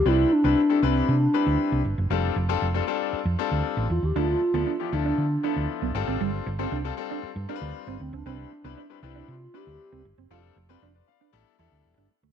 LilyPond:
<<
  \new Staff \with { instrumentName = "Soft synth lead" } { \time 4/4 \key c \major \tempo 4 = 117 e'8 d'4 c'8 d'4. r8 | r2. r8 f'16 g'16 | f'4. d'4. r4 | r2. r8 c'16 d'16 |
d'4. e'8 f'8 g'4 r8 | r1 | }
  \new Staff \with { instrumentName = "Clean electric guitar" } { \time 4/4 \key c \major r1 | r1 | d'16 r8 b16 d'16 r8 d'16 r8 d'16 r8 b16 r16 c'16 | g16 r8 c'16 d'16 r8 d'16 r8 d'16 r8 c'16 r16 c'16 |
c'16 r8 b16 d'16 r8 d'16 r8 d'16 r8 c'16 r16 c'16 | f'16 r8 c'16 d'16 r8 d'16 r8 e'16 r8 d'16 r16 a16 | }
  \new Staff \with { instrumentName = "Grand piano" } { \time 4/4 \key c \major << { r1 | r1 | r1 | r1 |
r1 | r4 r16 <b' d''>16 <d'' f''>16 <b' d''>8 r4. r16 | } \\ { <g c' d' e' b'>8 r16 <g c' d' e' b'>16 r16 <g c' d' e' a'>16 <g c' d' e' b'>8 r8 <g c' d' e' b'>4 r8 | <g c' d' f' a'>8 r16 <g c' d' f' a'>16 r16 <g c' d' f' a'>16 <g c' d' f' a'>8 r8 <g c' d' f' a'>4 r8 | <f b d' e' a'>8 r16 <f b d' e' a'>16 r16 <f b d' e' g'>16 <f b d' e' a'>8 r8 <f b d' e' a'>4 <g c' d' f' a'>8~ | <g c' d' f' a'>8 r16 <g c' d' f' a'>16 r16 <g c' d' f' a'>16 <g c' d' f' a'>8 r8 <g c' d' f' bes' b'>4 r8 |
<g c' d' e' b'>8 r16 <g c' d' e' b'>16 r16 <g c' d' e' b'>16 <g c' d' e' b'>8 r8 <g c' d' e' b'>4 r8 | <g c' d' f' a'>8 r16 <g c' d' f' b'>16 r4 <g b d' e' a'>8 <g b d' e' a'>4 r8 | } >> }
  \new Staff \with { instrumentName = "Fingered electric bass" } { \clef bass \time 4/4 \key c \major c,8 r16 c,16 r8 c,8 c8 r16 d,16 r16 c,16 g,,16 fis,,16 | f,,8 f,,8 f,,8 r8. f,16 r16 d,16 r16 a,,16 e,16 ees,16 | d,8 r16 d,16 r8 d,8 d8 r16 d,16 r16 b,,16 g,,16 gis,,16 | g,,8 g,,8 c,8 r8. g,16 r16 d,16 r16 g,,16 d,16 cis,16 |
c,8 r16 c,16 r8 c,8 c8 r16 d,16 r16 c,16 g,,16 fis,,16 | f,,8 f,,8 f,,8 r8 a,,16 r16 e,16 d,16 e,,16 g,,16 r16 d,16 | }
>>